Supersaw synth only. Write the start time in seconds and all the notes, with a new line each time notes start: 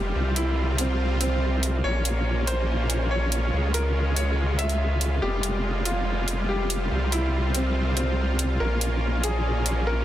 Already playing: G3 G#3 F4
0.15 C4 F4
1.84 A#3 C#4 F4
3.53 G#3
5.22 G3 G#3
6.91 C4
8.60 A#3 C#4